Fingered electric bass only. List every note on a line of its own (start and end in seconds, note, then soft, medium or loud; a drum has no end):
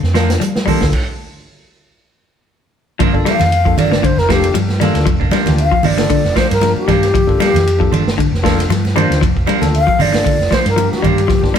0.03 0.35 F2 loud
0.41 0.75 G3 medium
0.81 0.91 D2 medium
3.01 3.23 G1 loud
3.40 3.73 F2 medium
3.78 4.12 G1 medium
4.17 4.50 F1 medium
4.55 4.90 G2 medium
4.95 5.05 D2 medium
5.07 5.29 F1 loud
5.47 5.69 D2 medium
5.85 6.07 G1 medium
6.25 6.35 F1 medium
6.51 6.73 G2 medium
6.89 7.11 G2 loud
7.15 7.37 G1 loud
7.54 7.87 F2 medium
7.91 8.26 G1 medium
8.31 8.64 F1 medium
8.69 9.04 G2 medium
9.10 9.20 D2 medium
9.23 9.45 F1 loud
9.62 9.84 D2 medium
9.99 10.22 G1 medium
10.39 10.49 F1 medium
10.52 muted fingered electric bass stroke soft
10.66 10.88 G2 medium
11.04 11.26 G2 medium
11.30 11.52 G1 loud